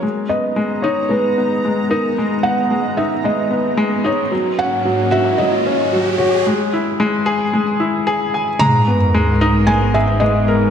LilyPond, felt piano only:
\new Staff \with { instrumentName = "Felt piano" } { \time 4/4 \key gis \minor \tempo 4 = 112 r8 dis''4 cis''8 b'4. ais'8 | r8 fis''4 e''8 dis''4. cis''8 | r8 fis''4 e''8 dis''4. cis''8 | r1 |
ais''2 gis''8 e''8 dis''4 | }